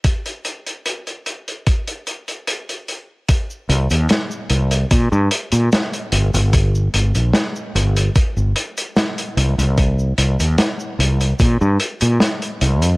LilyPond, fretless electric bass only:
\new Staff \with { instrumentName = "Fretless electric bass" } { \clef bass \time 4/4 \key c \minor \tempo 4 = 74 r1 | r8 c,16 ees,16 r8 c,8 bes,16 g,16 r16 bes,16 r8 g,,16 g,,16~ | g,,8 g,,16 bes,,16 r8 g,,8 r16 g,,16 r4 c,16 c,16~ | c,8 c,16 ees,16 r8 c,8 bes,16 g,16 r16 bes,16 r8 c,16 f,16 | }